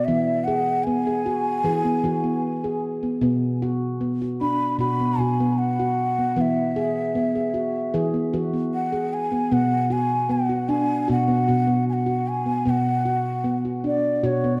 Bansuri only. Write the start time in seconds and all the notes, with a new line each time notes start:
0.05 E5
0.44 F#5
0.84 G#5
4.41 B5
4.80 B5
5.19 G#5
5.58 F#5
6.37 F#5
6.41 E5
8.74 F#5
9.13 G#5
9.53 F#5
9.92 G#5
10.31 F#5
10.69 G#5
11.11 F#5
11.89 G#5
11.93 F#5
12.28 G#5
12.69 F#5
13.87 D5
14.25 C#5